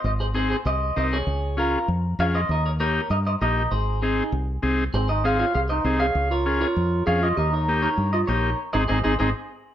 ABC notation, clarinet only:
X:1
M:4/4
L:1/8
Q:1/4=197
K:Ab
V:1 name="Clarinet"
z8 | z8 | z8 | z8 |
C E A F A E2 A- | A F2 F3 A F | G E2 E2 F E2 | z E E E E z3 |]